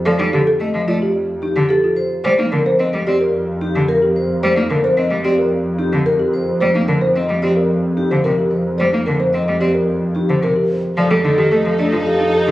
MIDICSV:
0, 0, Header, 1, 7, 480
1, 0, Start_track
1, 0, Tempo, 545455
1, 56, Time_signature, 4, 2, 24, 8
1, 11011, End_track
2, 0, Start_track
2, 0, Title_t, "Vibraphone"
2, 0, Program_c, 0, 11
2, 56, Note_on_c, 0, 74, 78
2, 212, Note_off_c, 0, 74, 0
2, 292, Note_on_c, 0, 69, 64
2, 451, Note_off_c, 0, 69, 0
2, 536, Note_on_c, 0, 75, 66
2, 692, Note_off_c, 0, 75, 0
2, 776, Note_on_c, 0, 74, 87
2, 932, Note_off_c, 0, 74, 0
2, 1250, Note_on_c, 0, 67, 62
2, 1410, Note_off_c, 0, 67, 0
2, 1485, Note_on_c, 0, 69, 79
2, 1648, Note_off_c, 0, 69, 0
2, 1729, Note_on_c, 0, 72, 70
2, 1889, Note_off_c, 0, 72, 0
2, 1970, Note_on_c, 0, 74, 76
2, 2130, Note_off_c, 0, 74, 0
2, 2214, Note_on_c, 0, 70, 72
2, 2371, Note_off_c, 0, 70, 0
2, 2454, Note_on_c, 0, 75, 66
2, 2611, Note_off_c, 0, 75, 0
2, 2698, Note_on_c, 0, 74, 79
2, 2853, Note_off_c, 0, 74, 0
2, 3179, Note_on_c, 0, 67, 64
2, 3333, Note_off_c, 0, 67, 0
2, 3422, Note_on_c, 0, 70, 73
2, 3574, Note_off_c, 0, 70, 0
2, 3662, Note_on_c, 0, 72, 60
2, 3814, Note_off_c, 0, 72, 0
2, 3898, Note_on_c, 0, 74, 76
2, 4053, Note_off_c, 0, 74, 0
2, 4147, Note_on_c, 0, 70, 66
2, 4296, Note_off_c, 0, 70, 0
2, 4378, Note_on_c, 0, 75, 60
2, 4533, Note_off_c, 0, 75, 0
2, 4617, Note_on_c, 0, 74, 84
2, 4772, Note_off_c, 0, 74, 0
2, 5092, Note_on_c, 0, 67, 61
2, 5251, Note_off_c, 0, 67, 0
2, 5332, Note_on_c, 0, 70, 71
2, 5491, Note_off_c, 0, 70, 0
2, 5575, Note_on_c, 0, 72, 61
2, 5732, Note_off_c, 0, 72, 0
2, 5818, Note_on_c, 0, 74, 75
2, 5973, Note_off_c, 0, 74, 0
2, 6056, Note_on_c, 0, 70, 62
2, 6212, Note_off_c, 0, 70, 0
2, 6297, Note_on_c, 0, 75, 57
2, 6452, Note_off_c, 0, 75, 0
2, 6532, Note_on_c, 0, 74, 69
2, 6690, Note_off_c, 0, 74, 0
2, 7016, Note_on_c, 0, 67, 53
2, 7172, Note_off_c, 0, 67, 0
2, 7251, Note_on_c, 0, 70, 61
2, 7410, Note_off_c, 0, 70, 0
2, 7488, Note_on_c, 0, 72, 51
2, 7649, Note_off_c, 0, 72, 0
2, 7726, Note_on_c, 0, 74, 57
2, 7889, Note_off_c, 0, 74, 0
2, 7970, Note_on_c, 0, 70, 51
2, 8130, Note_off_c, 0, 70, 0
2, 8206, Note_on_c, 0, 75, 49
2, 8369, Note_off_c, 0, 75, 0
2, 8454, Note_on_c, 0, 74, 62
2, 8611, Note_off_c, 0, 74, 0
2, 8931, Note_on_c, 0, 67, 46
2, 9090, Note_off_c, 0, 67, 0
2, 9175, Note_on_c, 0, 70, 56
2, 9331, Note_off_c, 0, 70, 0
2, 9416, Note_on_c, 0, 72, 47
2, 9572, Note_off_c, 0, 72, 0
2, 9660, Note_on_c, 0, 74, 77
2, 9813, Note_off_c, 0, 74, 0
2, 9901, Note_on_c, 0, 69, 63
2, 10054, Note_off_c, 0, 69, 0
2, 10136, Note_on_c, 0, 75, 67
2, 10292, Note_off_c, 0, 75, 0
2, 10375, Note_on_c, 0, 74, 82
2, 10532, Note_off_c, 0, 74, 0
2, 10617, Note_on_c, 0, 77, 66
2, 10772, Note_off_c, 0, 77, 0
2, 10854, Note_on_c, 0, 67, 64
2, 11011, Note_off_c, 0, 67, 0
2, 11011, End_track
3, 0, Start_track
3, 0, Title_t, "Alto flute"
3, 0, Program_c, 1, 73
3, 9659, Note_on_c, 1, 69, 67
3, 11011, Note_off_c, 1, 69, 0
3, 11011, End_track
4, 0, Start_track
4, 0, Title_t, "Marimba"
4, 0, Program_c, 2, 12
4, 50, Note_on_c, 2, 69, 78
4, 171, Note_on_c, 2, 63, 64
4, 210, Note_off_c, 2, 69, 0
4, 291, Note_on_c, 2, 67, 63
4, 330, Note_off_c, 2, 63, 0
4, 414, Note_on_c, 2, 69, 83
4, 450, Note_off_c, 2, 67, 0
4, 571, Note_off_c, 2, 69, 0
4, 773, Note_on_c, 2, 65, 81
4, 899, Note_on_c, 2, 67, 66
4, 931, Note_off_c, 2, 65, 0
4, 1053, Note_off_c, 2, 67, 0
4, 1257, Note_on_c, 2, 63, 64
4, 1412, Note_off_c, 2, 63, 0
4, 1498, Note_on_c, 2, 67, 84
4, 1620, Note_on_c, 2, 65, 61
4, 1653, Note_off_c, 2, 67, 0
4, 1773, Note_off_c, 2, 65, 0
4, 1979, Note_on_c, 2, 72, 81
4, 2102, Note_on_c, 2, 63, 63
4, 2133, Note_off_c, 2, 72, 0
4, 2223, Note_on_c, 2, 70, 67
4, 2254, Note_off_c, 2, 63, 0
4, 2342, Note_on_c, 2, 72, 81
4, 2374, Note_off_c, 2, 70, 0
4, 2494, Note_off_c, 2, 72, 0
4, 2702, Note_on_c, 2, 67, 81
4, 2823, Note_on_c, 2, 70, 64
4, 2854, Note_off_c, 2, 67, 0
4, 2974, Note_off_c, 2, 70, 0
4, 3182, Note_on_c, 2, 63, 59
4, 3334, Note_off_c, 2, 63, 0
4, 3419, Note_on_c, 2, 70, 80
4, 3540, Note_on_c, 2, 67, 62
4, 3573, Note_off_c, 2, 70, 0
4, 3693, Note_off_c, 2, 67, 0
4, 3900, Note_on_c, 2, 72, 77
4, 4020, Note_on_c, 2, 63, 62
4, 4053, Note_off_c, 2, 72, 0
4, 4142, Note_on_c, 2, 70, 61
4, 4173, Note_off_c, 2, 63, 0
4, 4260, Note_on_c, 2, 72, 78
4, 4294, Note_off_c, 2, 70, 0
4, 4413, Note_off_c, 2, 72, 0
4, 4617, Note_on_c, 2, 67, 80
4, 4736, Note_on_c, 2, 70, 61
4, 4772, Note_off_c, 2, 67, 0
4, 4892, Note_off_c, 2, 70, 0
4, 5092, Note_on_c, 2, 63, 63
4, 5250, Note_off_c, 2, 63, 0
4, 5334, Note_on_c, 2, 70, 76
4, 5451, Note_on_c, 2, 67, 56
4, 5491, Note_off_c, 2, 70, 0
4, 5610, Note_off_c, 2, 67, 0
4, 5812, Note_on_c, 2, 72, 72
4, 5933, Note_on_c, 2, 63, 58
4, 5971, Note_off_c, 2, 72, 0
4, 6054, Note_on_c, 2, 70, 54
4, 6091, Note_off_c, 2, 63, 0
4, 6171, Note_on_c, 2, 72, 70
4, 6211, Note_off_c, 2, 70, 0
4, 6330, Note_off_c, 2, 72, 0
4, 6537, Note_on_c, 2, 67, 65
4, 6655, Note_on_c, 2, 70, 56
4, 6692, Note_off_c, 2, 67, 0
4, 6812, Note_off_c, 2, 70, 0
4, 7015, Note_on_c, 2, 63, 50
4, 7134, Note_on_c, 2, 72, 52
4, 7171, Note_off_c, 2, 63, 0
4, 7253, Note_on_c, 2, 70, 63
4, 7291, Note_off_c, 2, 72, 0
4, 7379, Note_on_c, 2, 67, 51
4, 7411, Note_off_c, 2, 70, 0
4, 7533, Note_off_c, 2, 67, 0
4, 7730, Note_on_c, 2, 72, 61
4, 7853, Note_on_c, 2, 63, 47
4, 7890, Note_off_c, 2, 72, 0
4, 7976, Note_on_c, 2, 70, 50
4, 8011, Note_off_c, 2, 63, 0
4, 8094, Note_on_c, 2, 72, 61
4, 8132, Note_off_c, 2, 70, 0
4, 8251, Note_off_c, 2, 72, 0
4, 8453, Note_on_c, 2, 67, 60
4, 8576, Note_on_c, 2, 70, 48
4, 8611, Note_off_c, 2, 67, 0
4, 8732, Note_off_c, 2, 70, 0
4, 8940, Note_on_c, 2, 63, 47
4, 9061, Note_on_c, 2, 72, 46
4, 9093, Note_off_c, 2, 63, 0
4, 9181, Note_on_c, 2, 70, 61
4, 9214, Note_off_c, 2, 72, 0
4, 9294, Note_on_c, 2, 67, 45
4, 9334, Note_off_c, 2, 70, 0
4, 9451, Note_off_c, 2, 67, 0
4, 9775, Note_on_c, 2, 69, 78
4, 9898, Note_on_c, 2, 63, 62
4, 9932, Note_off_c, 2, 69, 0
4, 10014, Note_on_c, 2, 67, 65
4, 10052, Note_off_c, 2, 63, 0
4, 10138, Note_on_c, 2, 69, 78
4, 10171, Note_off_c, 2, 67, 0
4, 10293, Note_off_c, 2, 69, 0
4, 10378, Note_on_c, 2, 62, 64
4, 10496, Note_on_c, 2, 65, 80
4, 10533, Note_off_c, 2, 62, 0
4, 10620, Note_on_c, 2, 67, 65
4, 10652, Note_off_c, 2, 65, 0
4, 10738, Note_on_c, 2, 63, 63
4, 10773, Note_off_c, 2, 67, 0
4, 10860, Note_on_c, 2, 69, 81
4, 10893, Note_off_c, 2, 63, 0
4, 10977, Note_on_c, 2, 63, 63
4, 11011, Note_off_c, 2, 63, 0
4, 11011, Note_off_c, 2, 69, 0
4, 11011, End_track
5, 0, Start_track
5, 0, Title_t, "String section"
5, 0, Program_c, 3, 48
5, 9655, Note_on_c, 3, 63, 67
5, 9658, Note_on_c, 3, 69, 62
5, 11011, Note_off_c, 3, 63, 0
5, 11011, Note_off_c, 3, 69, 0
5, 11011, End_track
6, 0, Start_track
6, 0, Title_t, "Cello"
6, 0, Program_c, 4, 42
6, 50, Note_on_c, 4, 53, 81
6, 142, Note_off_c, 4, 53, 0
6, 168, Note_on_c, 4, 55, 66
6, 261, Note_off_c, 4, 55, 0
6, 294, Note_on_c, 4, 50, 63
6, 384, Note_off_c, 4, 50, 0
6, 527, Note_on_c, 4, 57, 66
6, 620, Note_off_c, 4, 57, 0
6, 652, Note_on_c, 4, 53, 63
6, 743, Note_off_c, 4, 53, 0
6, 771, Note_on_c, 4, 57, 79
6, 863, Note_off_c, 4, 57, 0
6, 1374, Note_on_c, 4, 50, 68
6, 1464, Note_off_c, 4, 50, 0
6, 1975, Note_on_c, 4, 55, 82
6, 2066, Note_off_c, 4, 55, 0
6, 2097, Note_on_c, 4, 58, 67
6, 2187, Note_off_c, 4, 58, 0
6, 2216, Note_on_c, 4, 50, 62
6, 2306, Note_off_c, 4, 50, 0
6, 2460, Note_on_c, 4, 60, 64
6, 2548, Note_off_c, 4, 60, 0
6, 2581, Note_on_c, 4, 55, 63
6, 2669, Note_off_c, 4, 55, 0
6, 2705, Note_on_c, 4, 60, 78
6, 2791, Note_off_c, 4, 60, 0
6, 3304, Note_on_c, 4, 50, 63
6, 3391, Note_off_c, 4, 50, 0
6, 3903, Note_on_c, 4, 55, 83
6, 3990, Note_off_c, 4, 55, 0
6, 4018, Note_on_c, 4, 58, 61
6, 4107, Note_off_c, 4, 58, 0
6, 4134, Note_on_c, 4, 50, 60
6, 4224, Note_off_c, 4, 50, 0
6, 4375, Note_on_c, 4, 60, 57
6, 4465, Note_off_c, 4, 60, 0
6, 4491, Note_on_c, 4, 55, 60
6, 4583, Note_off_c, 4, 55, 0
6, 4612, Note_on_c, 4, 60, 77
6, 4703, Note_off_c, 4, 60, 0
6, 5216, Note_on_c, 4, 50, 58
6, 5306, Note_off_c, 4, 50, 0
6, 5821, Note_on_c, 4, 55, 70
6, 5909, Note_off_c, 4, 55, 0
6, 5940, Note_on_c, 4, 58, 57
6, 6028, Note_off_c, 4, 58, 0
6, 6057, Note_on_c, 4, 50, 53
6, 6146, Note_off_c, 4, 50, 0
6, 6299, Note_on_c, 4, 60, 55
6, 6388, Note_off_c, 4, 60, 0
6, 6416, Note_on_c, 4, 55, 55
6, 6506, Note_off_c, 4, 55, 0
6, 6537, Note_on_c, 4, 60, 70
6, 6626, Note_off_c, 4, 60, 0
6, 7142, Note_on_c, 4, 50, 52
6, 7229, Note_off_c, 4, 50, 0
6, 7262, Note_on_c, 4, 48, 58
6, 7350, Note_off_c, 4, 48, 0
6, 7743, Note_on_c, 4, 55, 63
6, 7830, Note_off_c, 4, 55, 0
6, 7862, Note_on_c, 4, 58, 49
6, 7950, Note_off_c, 4, 58, 0
6, 7982, Note_on_c, 4, 50, 45
6, 8070, Note_off_c, 4, 50, 0
6, 8218, Note_on_c, 4, 60, 48
6, 8307, Note_off_c, 4, 60, 0
6, 8343, Note_on_c, 4, 55, 49
6, 8430, Note_off_c, 4, 55, 0
6, 8458, Note_on_c, 4, 60, 58
6, 8547, Note_off_c, 4, 60, 0
6, 9059, Note_on_c, 4, 50, 47
6, 9148, Note_off_c, 4, 50, 0
6, 9175, Note_on_c, 4, 48, 57
6, 9266, Note_off_c, 4, 48, 0
6, 9657, Note_on_c, 4, 53, 77
6, 9746, Note_off_c, 4, 53, 0
6, 9773, Note_on_c, 4, 55, 62
6, 9864, Note_off_c, 4, 55, 0
6, 9895, Note_on_c, 4, 50, 62
6, 9985, Note_off_c, 4, 50, 0
6, 10015, Note_on_c, 4, 51, 79
6, 10105, Note_off_c, 4, 51, 0
6, 10133, Note_on_c, 4, 57, 62
6, 10224, Note_off_c, 4, 57, 0
6, 10252, Note_on_c, 4, 53, 61
6, 10343, Note_off_c, 4, 53, 0
6, 10369, Note_on_c, 4, 57, 73
6, 10462, Note_off_c, 4, 57, 0
6, 10492, Note_on_c, 4, 53, 62
6, 10583, Note_off_c, 4, 53, 0
6, 10973, Note_on_c, 4, 50, 63
6, 11011, Note_off_c, 4, 50, 0
6, 11011, End_track
7, 0, Start_track
7, 0, Title_t, "Double bass section"
7, 0, Program_c, 5, 48
7, 0, Note_on_c, 5, 41, 56
7, 1844, Note_off_c, 5, 41, 0
7, 1973, Note_on_c, 5, 41, 72
7, 9523, Note_off_c, 5, 41, 0
7, 9654, Note_on_c, 5, 41, 67
7, 11011, Note_off_c, 5, 41, 0
7, 11011, End_track
0, 0, End_of_file